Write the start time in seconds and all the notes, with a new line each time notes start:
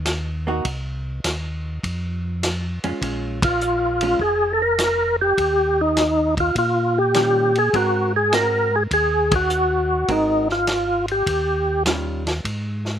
Already playing: D#2
0.05 snare, hi-hat pedal, ride
0.47 A#3 D#4 F#4
0.65 C2, kick, ride
1.24 D#2, snare, hi-hat pedal, ride
1.83 F2, kick, ride
2.43 snare, hi-hat pedal, ride
2.84 F2 G#3 C#4 F4, ride
3.01 A#1 G#3 C#4 F4, kick, ride
3.42 F4, kick, ride
3.61 hi-hat pedal
4.01 G#3 C#4 F4, ride
4.19 F1 G#4, kick
4.53 A4
4.62 A#4
4.79 snare, hi-hat pedal, ride
5.21 G4
5.38 D#2, kick, ride
5.81 D#4
5.97 snare, hi-hat pedal, ride
6.37 F4, kick, ride
6.55 A#2 F4, kick, ride
6.98 G4
7.14 D#3 G3 C#4 F4, snare, hi-hat pedal, ride
7.55 G#4, ride
7.73 G#2 G#3 C4 F#4 A#4, kick, ride
8.16 G#4
8.33 G#3 C4 F#4 A#4, snare, hi-hat pedal, ride
8.76 G#4
8.91 D#2 G#4, kick, ride
9.32 kick, ride
9.36 F#4
9.50 hi-hat pedal
10.08 G#1 G#3 C4 D#4 F#4 A#4, kick, ride
10.49 F4, snare
10.67 snare, hi-hat pedal, ride
11.08 G4, ride
11.26 D#2, kick, ride
11.86 D#3 G3 C#4 F4, snare, hi-hat pedal, ride
12.27 snare, ride
12.45 G#2, kick, ride
12.85 snare